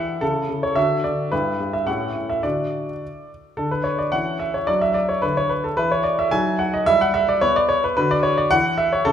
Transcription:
Already playing: E3 E4 G4 E5 F#5
0.21 C#3 E4 A4
0.49 C#3
0.63 C#5
0.76 D3 F#4 A4 E5
1.04 D3 D5
1.32 G2 E4 G4 B4
1.60 G2
1.73 E5
1.87 A2 C#4 G4 F#5
2.16 A2
2.29 E5
2.43 D3 D4 F#4 D5
3.57 D3 D4 A4
3.71 B4
3.84 C#5
3.98 D5
4.12 E3 C#4 F#5
4.39 E5
4.54 C#5
4.67 F#3 D4 D5
4.81 E5
4.94 D5
5.09 C#5
5.22 D3 B4
5.37 C#5
5.49 B4
5.64 A4
5.77 E3 E4 B4
5.91 C#5
6.04 D5
6.19 E5
6.31 F#3 D#4 G#5
6.59 F#5
6.74 D#5
6.86 G3 E4 E5
7.01 F#5
7.14 E5
7.29 D5
7.41 B3 C#5
7.56 D5
7.69 C#5
7.84 B4
7.97 D3 F#4 B4
8.11 D5
8.23 C#5
8.38 D5
8.51 E3 E4 F#5
8.78 E5
8.93 C#5
9.05 C#3 E4 A4

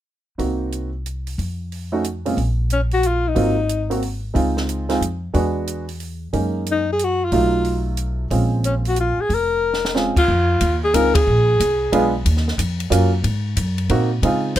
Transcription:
0.38 C2 A#3 C4 D#4 F#4, kick, open hi-hat
0.72 closed hi-hat
1.06 closed hi-hat
1.27 open hi-hat
1.38 F2, kick, open hi-hat
1.72 open hi-hat
1.92 A3 C#4 D#4 F#4
2.04 closed hi-hat
2.25 A#2 G#3 C4 C#4 F4, open hi-hat
2.37 A#1, kick, open hi-hat
2.70 C#4, closed hi-hat
2.91 F#4, open hi-hat
3.03 closed hi-hat
3.07 F4
3.28 D#4
3.35 G#1 F#3 A#3 C4 F4, kick, open hi-hat
3.69 closed hi-hat
3.90 F#3 A#3 C4 F#4, open hi-hat
4.02 open hi-hat
4.34 C#2 G#3 C4 D#4 F4, kick, open hi-hat
4.57 snare
4.69 closed hi-hat
4.89 G#3 C4 D#4 F4, snare, open hi-hat
5.01 F2, closed hi-hat
5.33 E2 G#3 B3 D4 F#4, kick, open hi-hat
5.67 closed hi-hat
5.89 open hi-hat
6.00 open hi-hat
6.33 F#2 G#3 A#3 C#4 D#4, kick, open hi-hat
6.66 closed hi-hat
6.72 D#4
6.93 G#4
6.99 closed hi-hat
7.04 F#4
7.25 F4
7.32 B1 F#3 A3 D#4 F4, kick, open hi-hat
7.64 open hi-hat
7.97 closed hi-hat
8.31 A#1 G#3 C4 C#4 F4, kick, open hi-hat
8.64 C#4, closed hi-hat
8.85 F#4, open hi-hat
8.96 closed hi-hat
9.00 F4
9.17 G#4, muted upright bass stroke
9.29 F1, kick, open hi-hat
9.34 A#4
9.74 snare
9.85 snare
9.94 G#3 C4 C#4 F4, snare
10.16 F4, muted upright bass stroke, kick, crash
10.28 F2, kick
10.61 D#2, kick, hi-hat pedal, ride
10.84 G#4
10.94 C#2 G#3 C4 D#4 F4 A#4, kick, hi-hat pedal, ride
11.15 G#4, kick, ride
11.27 A#1
11.60 C2, kick, hi-hat pedal, ride
11.92 B1 G#3 B3 D4 F4, kick, ride
12.25 D#2, kick, ride
12.37 snare
12.48 snare
12.58 F2, kick, hi-hat pedal, ride
12.80 ride
12.90 F#2 F#3 A#3 C#4 F4, kick, hi-hat pedal, ride
13.24 G#2, kick, ride
13.56 F#2, kick, hi-hat pedal, ride
13.78 ride
13.89 A#2 A#3 C4 D#4 F#4, kick, ride
14.23 C#3 G#3 C4 D#4 F4, kick, ride
14.56 C#2, kick, hi-hat pedal, ride

